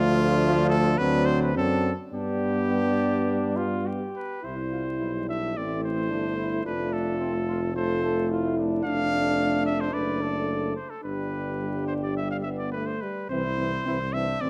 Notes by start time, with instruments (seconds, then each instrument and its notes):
Already playing: tuba D2, trombone F3, french horn A3, flugelhorn D4, trumpet F4
0.70 trumpet A4
0.98 tuba D2, trombone F#3, french horn C4, flugelhorn D4, trumpet B4
1.25 trumpet C5
1.42 trumpet B4
1.54 tuba F#2, trombone F#3, french horn C4, flugelhorn D4, trumpet A4
2.11 tuba G2, trombone G3, french horn B3, flugelhorn D4, trumpet G4
2.69 flugelhorn D4
3.56 flugelhorn F4
3.86 flugelhorn G4
4.16 trumpet B4
4.43 tuba C2, trombone G3, flugelhorn E4, french horn E4, trumpet C5
4.71 flugelhorn F4
4.99 tuba B1, flugelhorn E4
5.28 flugelhorn D4, trumpet E5
5.56 tuba A1, trombone A3, flugelhorn C4, french horn E4, trumpet D5
5.84 trumpet C5
6.10 tuba G1, flugelhorn D4
6.37 flugelhorn E4
6.64 tuba F1, trombone A3, flugelhorn D4, french horn F4, trumpet B4
6.93 trumpet A4
7.20 flugelhorn C4
7.48 flugelhorn F4
7.75 trombone A3, french horn F4, flugelhorn A4, trumpet C5
8.03 flugelhorn A4
8.30 french horn E4, flugelhorn F4
8.58 flugelhorn D4
8.84 tuba F1, trombone A3, french horn D4, trumpet F5
9.66 trumpet E5
9.81 trumpet C5
9.92 tuba F#1, trombone A3, french horn D4, flugelhorn B4, trumpet D5
10.22 flugelhorn A4
10.76 trumpet C5
10.90 trumpet A4
11.03 tuba G1, trombone G3, french horn D4, flugelhorn G4, trumpet B4
11.62 trombone G3
11.87 trumpet C5
12.03 trumpet D5
12.17 trumpet E5
12.31 trumpet F5
12.42 trumpet E5
12.46 trombone B3
12.58 trumpet D5
12.72 trombone A3, trumpet B4
12.86 trumpet C5
13.01 trombone G3, trumpet B4
13.30 tuba C2, trombone E3, french horn C4, flugelhorn E4, trumpet C5
13.58 trombone E3, french horn C4
13.85 tuba C2, trombone E3, french horn C4, flugelhorn E4
14.13 trombone E3, french horn C4, flugelhorn D4, trumpet E5
14.41 tuba A1, trombone E3, french horn C4, flugelhorn C4, trumpet D5